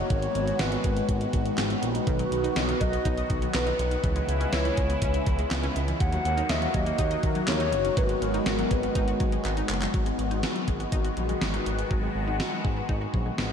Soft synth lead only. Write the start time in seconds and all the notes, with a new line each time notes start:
Already playing: C#5
0.60 B4
2.07 B4
2.81 D#5
3.54 B4
4.03 B4
4.53 C#5
6.00 F#5
6.50 E5
6.75 D#5
7.48 C#5
7.97 B4
8.22 A#4
8.46 A#4
8.71 B4